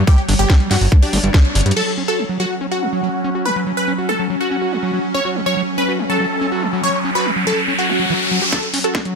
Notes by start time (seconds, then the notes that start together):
Already playing: F#3 C#5
0.07 G3 G4, kick, closed hi-hat
0.18 closed hi-hat
0.29 G1 D4, open hi-hat
0.39 G1 G4, closed hi-hat
0.50 G3, kick, snare, closed hi-hat
0.60 G3, closed hi-hat
0.71 G2 G3 F#4, snare, open hi-hat
0.81 G1, open hi-hat
0.92 D4, kick, closed hi-hat
1.03 D4 G4, open hi-hat
1.13 G1 G3, open hi-hat
1.24 G1 G3, closed hi-hat
1.34 G3, kick, snare, closed hi-hat
1.45 closed hi-hat
1.55 G1 D4, closed hi-hat, open hi-hat
1.61 closed hi-hat
1.66 G2 G4, closed hi-hat
1.71 closed hi-hat
1.76 F#3 C#4 A4, crash
1.98 C#4
2.08 F#4 A4
2.19 F#3
2.29 F#3
2.40 F#3 F#4
2.61 C#4
2.71 F#4
2.82 F#3
2.93 F#3
3.03 F#3
3.24 C#4
3.35 F#4
3.45 F#3 B4
3.56 F#3
3.67 F#3
3.77 B4
3.88 C#4
3.98 F#4
4.09 F#3 A4
4.19 F#3
4.30 F#3
4.41 F#4
4.51 C#4
4.62 F#4
4.72 F#3
4.83 F#3
4.93 F#3
5.14 C#4 C#5, riser
5.25 F#4
5.36 F#3
5.46 F#3 C#5
5.57 F#3
5.78 C#4 B4
5.88 F#4
5.99 F#3
6.10 F#3 A4
6.20 F#3
6.41 C#4
6.52 F#4
6.62 F#3
6.73 F#3
6.83 F#3 C#5
7.05 C#4
7.15 F#4 B4
7.26 F#3
7.36 F#3
7.47 F#3 A4
7.68 C#4
7.79 F#4
7.89 E3
8.00 F#3
8.10 E3
8.31 F#3
8.42 G4
8.52 F#3 C#4 A4, kick, snare, closed hi-hat
8.63 closed hi-hat
8.74 C#4, open hi-hat
8.84 F#4 A4, closed hi-hat
8.95 F#3, kick, snare, closed hi-hat
9.05 F#3, closed hi-hat